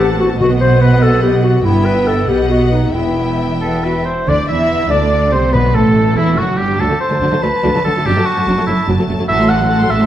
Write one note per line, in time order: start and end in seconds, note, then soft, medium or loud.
0.00 0.37 A1 medium
0.00 0.38 A2 medium
0.00 0.36 C4 medium
0.00 0.36 F#5 soft
0.00 0.36 A5 medium
0.20 0.29 F#4 medium
0.39 1.62 B1 medium
0.39 1.62 B2 medium
0.39 0.98 B2 medium
0.39 1.60 B3 medium
0.39 0.50 F#4 medium
0.39 1.61 D#5 medium
0.39 1.61 F#5 medium
0.61 0.83 C5 medium
0.81 1.04 B4 medium
1.03 1.22 A4 medium
1.22 1.43 G4 medium
1.43 1.66 F#4 medium
1.64 2.25 G1 soft
1.64 2.25 G2 medium
1.64 2.24 B3 medium
1.64 1.87 E4 medium
1.64 2.25 E5 soft
1.64 2.24 G5 soft
1.85 2.09 B4 medium
2.07 2.30 A4 medium
2.28 2.94 B1 medium
2.28 2.94 B2 soft
2.28 2.92 B3 soft
2.28 2.49 G4 medium
2.28 2.94 D#5 soft
2.28 2.94 F#5 soft
2.50 2.74 F#4 medium
2.72 2.94 D#4 medium
2.93 4.04 E1 soft
2.93 4.04 E2 soft
2.93 3.55 B3 soft
2.93 4.04 E4 medium
2.93 4.05 E5 soft
2.93 4.04 G5 soft
3.61 3.82 B3 soft
3.61 3.85 A4 medium
3.84 3.92 F#4 soft
3.84 4.07 B4 medium
4.05 4.27 E4 soft
4.05 4.30 C5 medium
4.27 4.36 D2 medium
4.27 4.35 D3 medium
4.27 4.36 D4 medium
4.27 4.47 D5 medium
4.27 4.47 D5 soft
4.27 4.48 D5 medium
4.48 4.90 E2 medium
4.48 4.90 E3 soft
4.48 4.90 E4 medium
4.48 4.91 E5 medium
4.48 4.92 E5 medium
4.48 4.90 E5 medium
4.90 5.32 D2 medium
4.90 5.33 D3 medium
4.90 5.33 D4 medium
4.90 5.32 D5 medium
4.90 5.33 D5 medium
4.90 5.31 D5 medium
5.32 5.55 C2 soft
5.32 5.54 C3 medium
5.32 5.54 C4 soft
5.32 5.52 C5 medium
5.32 5.54 C5 soft
5.32 5.42 C5 soft
5.53 5.76 B1 medium
5.53 5.75 B2 medium
5.53 6.13 B2 soft
5.53 5.75 B3 medium
5.53 5.76 B4 medium
5.53 5.62 B4 medium
5.53 5.75 B4 medium
5.74 6.17 A1 medium
5.74 6.17 A2 soft
5.74 6.17 A3 medium
5.74 6.17 A4 medium
5.74 6.16 A4 medium
6.16 6.38 E1 medium
6.16 6.38 E2 medium
6.16 6.38 E3 medium
6.16 6.38 E4 medium
6.16 6.39 E4 medium
6.16 6.37 E4 medium
6.37 6.59 F#1 medium
6.37 6.59 F#2 soft
6.37 6.59 F#3 medium
6.37 6.59 F#4 soft
6.37 6.59 F#4 medium
6.37 6.59 F#4 soft
6.58 6.80 G1 medium
6.58 6.80 G2 medium
6.58 6.80 G3 medium
6.58 6.82 G4 medium
6.58 6.79 G4 soft
6.58 6.80 G4 medium
6.80 6.84 D2 medium
6.80 6.84 D3 medium
6.80 6.84 F#3 medium
6.80 6.84 D4 medium
6.80 7.00 A4 medium
6.80 9.25 A5 soft
6.90 6.94 D3 soft
6.90 6.94 F#3 soft
6.90 6.94 A3 soft
7.00 7.44 C5 medium
7.11 7.15 D3 soft
7.11 7.15 F#3 soft
7.11 7.16 A3 soft
7.21 7.26 D2 medium
7.21 7.26 D3 medium
7.21 7.26 F#3 medium
7.21 7.25 D4 medium
7.32 7.36 D3 soft
7.32 7.36 F#3 soft
7.32 7.37 A3 soft
7.42 7.47 D2 soft
7.42 7.47 D3 soft
7.42 7.47 F#3 soft
7.42 7.47 A3 soft
7.42 7.84 B4 medium
7.64 7.68 D2 medium
7.64 7.68 D3 medium
7.64 7.68 F#3 medium
7.64 7.68 D4 medium
7.75 7.79 D3 soft
7.75 7.79 F#3 soft
7.75 7.79 A3 soft
7.84 7.89 D2 soft
7.84 7.90 D3 soft
7.84 7.90 F#3 soft
7.84 7.90 A3 soft
7.84 8.07 A4 medium
7.95 8.00 D3 soft
7.95 7.99 F#3 soft
7.95 8.01 A3 soft
8.06 8.10 F#1 medium
8.06 8.10 F#2 medium
8.06 8.10 F#3 medium
8.06 8.11 D4 medium
8.06 8.27 G4 medium
8.17 8.21 F#2 soft
8.17 8.21 F#3 soft
8.17 8.21 A3 soft
8.26 8.66 F#4 medium
8.37 8.41 F#2 soft
8.37 8.41 F#3 soft
8.37 8.42 A3 soft
8.47 8.52 F#1 medium
8.47 8.51 F#2 medium
8.47 8.52 F#3 medium
8.47 8.52 D4 medium
8.57 8.61 F#2 soft
8.57 8.62 F#3 soft
8.57 8.62 A3 soft
8.67 8.72 F#1 soft
8.67 8.72 F#2 soft
8.67 8.72 F#3 soft
8.67 8.72 A3 soft
8.67 8.87 E4 medium
8.88 8.92 F#1 medium
8.88 8.92 F#2 medium
8.88 8.93 F#3 medium
8.88 8.92 D4 medium
8.98 9.02 F#2 soft
8.98 9.03 F#3 soft
8.98 9.03 A3 soft
9.08 9.13 F#1 soft
9.08 9.12 F#2 soft
9.08 9.13 F#3 soft
9.08 9.13 A3 medium
9.18 9.22 F#2 soft
9.18 9.23 F#3 medium
9.18 9.24 A3 soft
9.28 9.83 A1 medium
9.28 9.83 A2 medium
9.28 9.39 A3 soft
9.28 9.39 F#4 soft
9.28 9.51 E5 loud
9.28 9.39 A5 soft
9.39 9.50 F#3 soft
9.39 9.50 A4 soft
9.39 9.50 C6 soft
9.49 9.60 A3 soft
9.49 9.60 F#4 soft
9.49 9.92 F#5 medium
9.49 9.60 A5 soft
9.59 9.70 F#3 soft
9.59 9.70 A4 soft
9.59 9.70 C6 soft
9.69 9.80 A3 soft
9.69 9.79 F#4 soft
9.69 9.79 A5 soft
9.80 9.91 F#3 soft
9.80 9.90 A4 soft
9.80 9.90 C6 soft
9.89 10.06 A1 medium
9.89 10.06 A2 medium
9.89 10.01 A3 soft
9.89 10.00 F#4 soft
9.89 10.06 E5 medium
9.89 10.01 A5 medium
10.00 10.06 F#3 soft
10.00 10.06 A4 soft
10.00 10.06 C6 soft